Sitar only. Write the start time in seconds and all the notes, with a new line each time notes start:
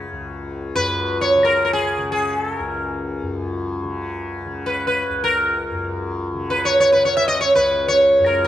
0.76 B4
1.21 C#5
1.45 A#4
1.65 A#4
1.73 G#4
2.12 G#4
2.38 A4
2.58 A#4
4.66 B4
4.87 B4
5.24 A#4
6.50 B4
6.65 C#5
6.80 C#5
6.92 B4
7.05 C#5
7.17 E5
7.28 D#5
7.41 C#5
7.55 B4
7.88 C#5
8.26 A#4
8.45 A#4